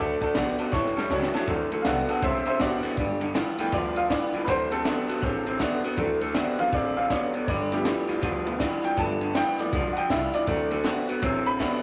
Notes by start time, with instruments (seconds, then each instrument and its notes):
Already playing: upright bass D2, clean electric guitar D3 A3 D5, steel-string acoustic guitar D3, upright piano D5 F#5
0.00 upright piano A5
0.21 clean electric guitar D3 A3, upright piano D5 F#5 A5, muted upright bass stroke, kick, ride
0.34 upright bass A#1, steel-string acoustic guitar D3 A3 C4 F#4, clean electric guitar D3 B3, upright piano D5 F#5 A5, snare, ride
0.58 clean electric guitar D3 B3, steel-string acoustic guitar C4 F#4, upright piano D5 F#5 A5, muted upright bass stroke, ride
0.72 upright bass A1, steel-string acoustic guitar A2, clean electric guitar A2 E3 C#5, upright piano C#5 E5 A5, kick, snare
0.85 snare
0.96 clean electric guitar A2 G3, upright piano C#5 E5 A5, muted upright bass stroke, snare
1.09 upright bass C#2, clean electric guitar A2 F#3, steel-string acoustic guitar E3 G3 C#4 E4, upright piano C#5 E5 A5, snare
1.23 snare
1.33 clean electric guitar A2 F#3, steel-string acoustic guitar C#4 E4, upright piano C#5 E5 A5, snare
1.47 upright bass D2, steel-string acoustic guitar D3, clean electric guitar D3 A3, upright piano E3 F#3 C4, kick, ride
1.71 clean electric guitar D3 A3, muted upright bass stroke, ride
1.82 upright bass C2, steel-string acoustic guitar D3 A3 C4, clean electric guitar D3 B3, upright piano A4 F5, snare, ride
1.86 steel-string acoustic guitar F#4, upright piano F#5
2.08 clean electric guitar D3 B3, steel-string acoustic guitar C4 F#4, upright piano A4 F#5, ride
2.22 upright bass B1, steel-string acoustic guitar A2, clean electric guitar D3 C4, upright piano C5 E5, kick, ride
2.45 clean electric guitar D3 C4, upright piano C5 E5, muted upright bass stroke, ride
2.59 upright bass A1, clean electric guitar D3 B3, steel-string acoustic guitar D3 A3 C4 F#4, upright piano F#4 D5, kick, snare, ride
2.83 clean electric guitar D3 B3, muted upright bass stroke, ride
2.97 upright bass G1, clean electric guitar G2 D3, steel-string acoustic guitar G3, kick, ride
3.20 clean electric guitar G2 D3, snare, ride
3.34 clean electric guitar G2 E3, steel-string acoustic guitar G3 B3 F4, snare, ride
3.58 clean electric guitar G2 E3, upright piano F3 A3 B3 G5, steel-string acoustic guitar B3 F4, muted upright bass stroke, ride
3.72 upright bass D2, clean electric guitar G2 F3, steel-string acoustic guitar D3, upright piano D5, kick, ride
3.95 clean electric guitar G2 F3, upright piano F5, ride
4.09 clean electric guitar G2 E3, steel-string acoustic guitar G3 B3 F4, upright piano D5, kick, snare, ride
4.33 clean electric guitar G2 E3, steel-string acoustic guitar B3 F4, muted upright bass stroke, ride
4.44 upright bass D2, clean electric guitar D3 A3, steel-string acoustic guitar D3, upright piano E3 F#3 B4, kick, ride
4.48 upright piano C4 C5
4.71 clean electric guitar D3 A3, upright piano C4 A4, ride
4.85 steel-string acoustic guitar D3 A3 C4 F#4, clean electric guitar D3 B3, snare, ride
5.08 clean electric guitar D3 B3, steel-string acoustic guitar C4 F#4, muted upright bass stroke, ride
5.22 upright bass A1, steel-string acoustic guitar A2, clean electric guitar D3 C4, kick, ride
5.46 clean electric guitar D3 C4, ride
5.59 steel-string acoustic guitar D3 A3 C4 F#4, clean electric guitar D3 B3, kick, snare, ride
5.83 clean electric guitar D3 B3, steel-string acoustic guitar C4 F#4, muted upright bass stroke, ride
5.97 upright bass D2, steel-string acoustic guitar D3, clean electric guitar D3 A3, upright piano E3 F#3 C4, kick, ride
6.21 clean electric guitar D3 A3, ride
6.34 steel-string acoustic guitar D3 A3 C4 F#4, clean electric guitar D3 B3, snare, ride
6.58 clean electric guitar D3 B3, upright piano E3 F#3 C4 F5, steel-string acoustic guitar C4 F#4, muted upright bass stroke, ride
6.72 upright bass A1, clean electric guitar D3 C4, steel-string acoustic guitar E3, upright piano D5, kick, ride
6.97 clean electric guitar D3 C4, upright piano F5, ride
7.10 clean electric guitar D3 B3, steel-string acoustic guitar F#3, upright piano D5, kick, snare, ride
7.34 clean electric guitar D3 B3, muted upright bass stroke, ride
7.44 upright bass G1, clean electric guitar G2, steel-string acoustic guitar G3, upright piano C#5, kick, ride
7.48 clean electric guitar D3, upright piano D5
7.71 clean electric guitar G2 D3, upright piano F3 A3 B3 G4, snare, ride
7.84 clean electric guitar G2 E3, steel-string acoustic guitar G3 B3 F4, snare, ride
8.08 clean electric guitar G2 E3, steel-string acoustic guitar B3 F4, muted upright bass stroke, ride
8.22 upright bass D2, clean electric guitar G2 F3, steel-string acoustic guitar D3, kick, ride
8.46 clean electric guitar G2 F3, upright piano F3 A3 B3, ride
8.59 clean electric guitar G2 E3, steel-string acoustic guitar G3 B3 F4, kick, snare, ride
8.82 clean electric guitar G2 E3, steel-string acoustic guitar B3 F4, upright piano G5, muted upright bass stroke, ride
8.97 upright bass G1, clean electric guitar G2 D3, upright piano F3 A3 B3 A5, steel-string acoustic guitar G3, kick, ride
9.21 clean electric guitar G2 D3, ride
9.34 clean electric guitar G2 E3, steel-string acoustic guitar G3 B3 F4, upright piano G5, snare, ride
9.58 clean electric guitar G2 E3, upright piano F3 A3 B3 D5, steel-string acoustic guitar B3 F4, muted upright bass stroke, ride
9.73 upright bass B1, clean electric guitar G2 F3, steel-string acoustic guitar D3, kick, ride
9.93 clean electric guitar G2 F3, upright piano F#5, muted upright bass stroke, ride
9.98 upright piano G5
10.09 upright bass C2, clean electric guitar G2 E3, steel-string acoustic guitar G3 B3 F4, upright piano E5, kick, snare, ride
10.33 clean electric guitar G2 E3, steel-string acoustic guitar B3 F4, upright piano D5, ride
10.47 upright bass D2, steel-string acoustic guitar D3, clean electric guitar D3 A3, upright piano E3 F#3 C4, kick, ride
10.71 clean electric guitar D3 A3, snare, ride
10.84 steel-string acoustic guitar D3 A3 C4 F#4, clean electric guitar D3 B3, snare, ride
11.07 clean electric guitar D3 B3, steel-string acoustic guitar C4 F#4, muted upright bass stroke, ride
11.22 upright bass A1, steel-string acoustic guitar A2, clean electric guitar D3 C4, upright piano E3 F#3 C4, kick, ride
11.45 clean electric guitar D3 C4, upright piano B5, ride
11.59 clean electric guitar D3 B3, steel-string acoustic guitar D3 A3 C4 F#4, kick, snare, ride